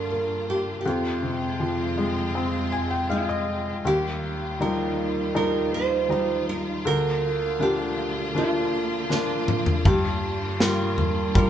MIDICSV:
0, 0, Header, 1, 5, 480
1, 0, Start_track
1, 0, Key_signature, -3, "major"
1, 0, Tempo, 750000
1, 547, Time_signature, 4, 2, 24, 8
1, 7359, End_track
2, 0, Start_track
2, 0, Title_t, "Nylon-string guitar"
2, 0, Program_c, 0, 24
2, 0, Note_on_c, 0, 70, 71
2, 316, Note_off_c, 0, 70, 0
2, 319, Note_on_c, 0, 67, 65
2, 495, Note_off_c, 0, 67, 0
2, 517, Note_on_c, 0, 67, 47
2, 554, Note_off_c, 0, 67, 0
2, 559, Note_on_c, 0, 65, 64
2, 1967, Note_off_c, 0, 65, 0
2, 1993, Note_on_c, 0, 65, 65
2, 2475, Note_on_c, 0, 67, 78
2, 2484, Note_off_c, 0, 65, 0
2, 2952, Note_off_c, 0, 67, 0
2, 2955, Note_on_c, 0, 70, 73
2, 3425, Note_off_c, 0, 70, 0
2, 3433, Note_on_c, 0, 70, 82
2, 3672, Note_off_c, 0, 70, 0
2, 3675, Note_on_c, 0, 72, 81
2, 4125, Note_off_c, 0, 72, 0
2, 4155, Note_on_c, 0, 70, 76
2, 4218, Note_off_c, 0, 70, 0
2, 4395, Note_on_c, 0, 70, 87
2, 4879, Note_on_c, 0, 67, 74
2, 4885, Note_off_c, 0, 70, 0
2, 5359, Note_off_c, 0, 67, 0
2, 5361, Note_on_c, 0, 65, 75
2, 5835, Note_off_c, 0, 65, 0
2, 5843, Note_on_c, 0, 65, 78
2, 6319, Note_off_c, 0, 65, 0
2, 6322, Note_on_c, 0, 67, 82
2, 6768, Note_off_c, 0, 67, 0
2, 6803, Note_on_c, 0, 70, 83
2, 7249, Note_off_c, 0, 70, 0
2, 7285, Note_on_c, 0, 70, 84
2, 7359, Note_off_c, 0, 70, 0
2, 7359, End_track
3, 0, Start_track
3, 0, Title_t, "Felt piano"
3, 0, Program_c, 1, 0
3, 0, Control_c, 1, 64, 127
3, 0, Note_on_c, 1, 43, 55
3, 0, Note_on_c, 1, 50, 40
3, 0, Note_on_c, 1, 53, 45
3, 0, Note_on_c, 1, 58, 45
3, 0, Note_on_c, 1, 62, 47
3, 70, Note_off_c, 1, 58, 0
3, 70, Note_on_c, 1, 58, 44
3, 520, Note_off_c, 1, 43, 0
3, 523, Note_off_c, 1, 62, 0
3, 534, Note_off_c, 1, 58, 0
3, 547, Note_on_c, 1, 41, 54
3, 556, Control_c, 1, 64, 0
3, 561, Note_off_c, 1, 53, 0
3, 562, Note_off_c, 1, 50, 0
3, 653, Control_c, 1, 64, 127
3, 785, Note_on_c, 1, 48, 41
3, 1023, Note_on_c, 1, 53, 43
3, 1265, Note_on_c, 1, 56, 45
3, 1505, Note_on_c, 1, 60, 46
3, 1720, Note_off_c, 1, 48, 0
3, 1742, Note_on_c, 1, 80, 52
3, 1856, Note_off_c, 1, 80, 0
3, 1860, Note_on_c, 1, 79, 53
3, 1959, Note_off_c, 1, 53, 0
3, 1973, Note_off_c, 1, 56, 0
3, 1975, Note_off_c, 1, 79, 0
3, 1981, Note_on_c, 1, 77, 50
3, 1983, Note_on_c, 1, 56, 41
3, 2095, Note_off_c, 1, 77, 0
3, 2106, Note_on_c, 1, 75, 52
3, 2440, Note_off_c, 1, 60, 0
3, 2441, Note_off_c, 1, 41, 0
3, 2441, Note_off_c, 1, 75, 0
3, 2450, Note_off_c, 1, 56, 0
3, 2464, Note_on_c, 1, 39, 52
3, 2476, Control_c, 1, 64, 0
3, 2590, Control_c, 1, 64, 127
3, 2944, Note_on_c, 1, 53, 41
3, 2947, Note_on_c, 1, 55, 37
3, 2949, Note_on_c, 1, 63, 45
3, 3411, Note_off_c, 1, 53, 0
3, 3412, Note_off_c, 1, 55, 0
3, 3413, Note_off_c, 1, 63, 0
3, 3420, Note_on_c, 1, 53, 40
3, 3422, Note_on_c, 1, 55, 37
3, 3424, Note_on_c, 1, 63, 46
3, 3888, Note_off_c, 1, 53, 0
3, 3890, Note_off_c, 1, 55, 0
3, 3891, Note_off_c, 1, 63, 0
3, 3897, Note_on_c, 1, 53, 38
3, 3901, Note_on_c, 1, 55, 38
3, 3905, Note_on_c, 1, 63, 44
3, 4360, Note_off_c, 1, 39, 0
3, 4367, Note_off_c, 1, 53, 0
3, 4369, Note_off_c, 1, 55, 0
3, 4371, Note_off_c, 1, 63, 0
3, 4385, Note_on_c, 1, 38, 56
3, 4395, Control_c, 1, 64, 0
3, 4519, Control_c, 1, 64, 127
3, 4861, Note_on_c, 1, 53, 41
3, 4866, Note_on_c, 1, 58, 40
3, 4866, Note_on_c, 1, 62, 49
3, 5329, Note_off_c, 1, 53, 0
3, 5332, Note_off_c, 1, 58, 0
3, 5332, Note_off_c, 1, 62, 0
3, 5342, Note_on_c, 1, 53, 44
3, 5345, Note_on_c, 1, 58, 40
3, 5348, Note_on_c, 1, 62, 49
3, 5810, Note_off_c, 1, 53, 0
3, 5811, Note_off_c, 1, 58, 0
3, 5813, Note_off_c, 1, 62, 0
3, 5822, Note_on_c, 1, 53, 42
3, 5826, Note_on_c, 1, 58, 38
3, 5827, Note_on_c, 1, 62, 44
3, 6280, Note_off_c, 1, 38, 0
3, 6290, Note_off_c, 1, 53, 0
3, 6292, Note_off_c, 1, 58, 0
3, 6292, Note_off_c, 1, 62, 0
3, 6310, Note_on_c, 1, 43, 59
3, 6314, Control_c, 1, 64, 0
3, 6411, Control_c, 1, 64, 127
3, 6784, Note_on_c, 1, 55, 45
3, 6788, Note_on_c, 1, 58, 40
3, 6789, Note_on_c, 1, 65, 50
3, 7251, Note_off_c, 1, 55, 0
3, 7253, Note_off_c, 1, 58, 0
3, 7253, Note_off_c, 1, 65, 0
3, 7261, Note_on_c, 1, 55, 46
3, 7265, Note_on_c, 1, 58, 42
3, 7266, Note_on_c, 1, 65, 50
3, 7359, Note_off_c, 1, 43, 0
3, 7359, Note_off_c, 1, 55, 0
3, 7359, Note_off_c, 1, 58, 0
3, 7359, Note_off_c, 1, 65, 0
3, 7359, End_track
4, 0, Start_track
4, 0, Title_t, "String section"
4, 0, Program_c, 2, 48
4, 0, Note_on_c, 2, 43, 53
4, 0, Note_on_c, 2, 50, 49
4, 0, Note_on_c, 2, 58, 46
4, 0, Note_on_c, 2, 65, 60
4, 521, Note_off_c, 2, 50, 0
4, 522, Note_off_c, 2, 58, 0
4, 523, Note_off_c, 2, 65, 0
4, 527, Note_off_c, 2, 43, 0
4, 545, Note_on_c, 2, 41, 54
4, 546, Note_on_c, 2, 56, 53
4, 546, Note_on_c, 2, 65, 60
4, 548, Note_on_c, 2, 48, 51
4, 2446, Note_off_c, 2, 41, 0
4, 2447, Note_off_c, 2, 56, 0
4, 2447, Note_off_c, 2, 65, 0
4, 2448, Note_off_c, 2, 48, 0
4, 2463, Note_on_c, 2, 51, 48
4, 2463, Note_on_c, 2, 65, 64
4, 2464, Note_on_c, 2, 39, 55
4, 2464, Note_on_c, 2, 55, 51
4, 4366, Note_off_c, 2, 39, 0
4, 4366, Note_off_c, 2, 51, 0
4, 4366, Note_off_c, 2, 55, 0
4, 4382, Note_on_c, 2, 38, 58
4, 4385, Note_on_c, 2, 50, 52
4, 4385, Note_on_c, 2, 58, 53
4, 6285, Note_off_c, 2, 38, 0
4, 6308, Note_on_c, 2, 43, 65
4, 7359, Note_off_c, 2, 43, 0
4, 7359, Note_off_c, 2, 50, 0
4, 7359, Note_off_c, 2, 58, 0
4, 7359, Note_off_c, 2, 65, 0
4, 7359, End_track
5, 0, Start_track
5, 0, Title_t, "Drums"
5, 5831, Note_on_c, 9, 38, 50
5, 5895, Note_off_c, 9, 38, 0
5, 6068, Note_on_c, 9, 45, 72
5, 6132, Note_off_c, 9, 45, 0
5, 6185, Note_on_c, 9, 43, 70
5, 6249, Note_off_c, 9, 43, 0
5, 6306, Note_on_c, 9, 43, 81
5, 6307, Note_on_c, 9, 36, 85
5, 6370, Note_off_c, 9, 43, 0
5, 6371, Note_off_c, 9, 36, 0
5, 6787, Note_on_c, 9, 38, 93
5, 6851, Note_off_c, 9, 38, 0
5, 7026, Note_on_c, 9, 43, 58
5, 7090, Note_off_c, 9, 43, 0
5, 7265, Note_on_c, 9, 43, 58
5, 7266, Note_on_c, 9, 36, 79
5, 7329, Note_off_c, 9, 43, 0
5, 7330, Note_off_c, 9, 36, 0
5, 7359, End_track
0, 0, End_of_file